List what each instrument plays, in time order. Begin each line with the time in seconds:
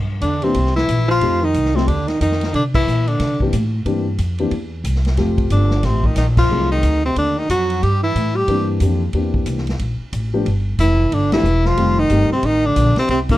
Already playing: upright bass G2
0.21 upright bass E2, baritone saxophone D3, tenor saxophone D4, kick, hi-hat pedal, ride
0.42 baritone saxophone C3, grand piano E3 A#3 C4 D4 G4, tenor saxophone C4, ride
0.54 upright bass C2, kick, ride
0.66 snare
0.75 baritone saxophone E3, tenor saxophone E4, snare
0.88 upright bass A#1, kick, hi-hat pedal, ride
1.08 baritone saxophone F3, tenor saxophone F4
1.21 upright bass F2, grand piano F3 A3 C4 D#4 G4, kick, ride
1.42 baritone saxophone D#3, tenor saxophone D#4
1.54 upright bass C2, kick, hi-hat pedal, ride
1.66 snare
1.74 baritone saxophone C3, grand piano F3 A3 C4 D#4 G4, tenor saxophone C4, snare
1.87 upright bass D#2, baritone saxophone D3, tenor saxophone D4, kick, ride
2.08 baritone saxophone D#3, tenor saxophone D#4, snare, ride
2.20 upright bass F2, baritone saxophone D#3, tenor saxophone D#4, kick, hi-hat pedal, ride
2.32 snare
2.41 snare, ride
2.53 upright bass C3, baritone saxophone D3, tenor saxophone D4, kick, ride
2.74 baritone saxophone E3, tenor saxophone E4, kick, crash
2.87 upright bass A#2, hi-hat pedal
3.07 baritone saxophone D3, tenor saxophone D4, ride
3.20 upright bass C3, kick, snare, ride
3.40 grand piano E3 A#3 C4 D4 G4, kick
3.53 upright bass A2, kick, hi-hat pedal, ride
3.85 upright bass G2, grand piano E3 A#3 C4 D4 G4, kick, ride
4.18 upright bass F2, kick, hi-hat pedal, ride
4.38 grand piano E3 A#3 C4 D4 G4, ride
4.51 upright bass E2, kick, ride
4.84 upright bass C2, kick, hi-hat pedal, ride
4.96 snare
5.05 snare, ride
5.17 upright bass F1, grand piano F3 A3 C4 F4 G4, kick, snare, ride
5.38 kick, ride
5.50 upright bass G1, baritone saxophone D3, tenor saxophone D4, kick, hi-hat pedal, ride
5.71 snare
5.83 upright bass A1, baritone saxophone C3, tenor saxophone C4, kick, snare, ride
6.04 baritone saxophone D#3, tenor saxophone D#4, kick
6.16 upright bass A#1, baritone saxophone D#3, tenor saxophone D#4, kick, snare, hi-hat pedal, ride
6.37 baritone saxophone F3, tenor saxophone F4, kick, crash
6.50 upright bass C2, grand piano F#3 A3 C4 D#4 G#4
6.72 baritone saxophone D#3, tenor saxophone D#4
6.83 upright bass D2, kick, hi-hat pedal, ride
7.04 baritone saxophone C3, tenor saxophone C4
7.16 upright bass D#2, baritone saxophone D3, tenor saxophone D4, kick, ride
7.37 baritone saxophone D#3, tenor saxophone D#4
7.49 upright bass F2, baritone saxophone F#3, tenor saxophone F#4, kick, hi-hat pedal, ride
7.70 ride
7.83 upright bass G2, baritone saxophone G3, tenor saxophone G4, kick, ride
8.03 baritone saxophone E3, tenor saxophone E4
8.15 upright bass A2, kick, hi-hat pedal, ride
8.35 baritone saxophone G3, tenor saxophone G4
8.48 upright bass G2, grand piano E3 A#3 C4 D4 G4, kick, ride
8.80 upright bass F2, grand piano E3 A#3 C4 D4 G4, kick, hi-hat pedal, ride
9.13 upright bass E2, grand piano E3 A#3 C4 D4 G4, kick, ride
9.34 kick
9.46 upright bass C2, kick, hi-hat pedal, ride
9.58 snare
9.67 snare, ride
9.79 upright bass A#1, kick, ride
10.00 muted upright bass stroke
10.13 upright bass A1, kick, hi-hat pedal, ride
10.34 grand piano F3 A3 B3 D4 G4
10.45 upright bass G1, kick, ride
10.79 upright bass F1, baritone saxophone E3, tenor saxophone E4, kick, hi-hat pedal, ride
11.11 upright bass G1, baritone saxophone D3, tenor saxophone D4, kick, ride
11.32 baritone saxophone E3, grand piano F3 A3 B3 D4 G4, tenor saxophone E4, snare, ride
11.43 upright bass E1, hi-hat pedal
11.65 baritone saxophone F3, tenor saxophone F4, snare
11.77 upright bass F1, grand piano D#3 G3 A3 C4 F4, kick, ride
11.99 baritone saxophone D#3, tenor saxophone D#4
12.10 upright bass G1, grand piano D#3 G3 A3 C4 G4, kick, hi-hat pedal, ride
12.30 baritone saxophone C3, tenor saxophone C4, muted upright bass stroke
12.43 upright bass A1, baritone saxophone D#3, tenor saxophone D#4, kick, ride
12.66 baritone saxophone D3, tenor saxophone D4
12.76 upright bass A#1, kick, hi-hat pedal, ride
12.96 baritone saxophone C3, tenor saxophone C4, muted upright bass stroke, snare, ride
13.08 upright bass C2, baritone saxophone C3, tenor saxophone C4, kick, ride
13.29 baritone saxophone A#2, grand piano D3 G3 A#3 C4 E4, tenor saxophone A#3, kick, crash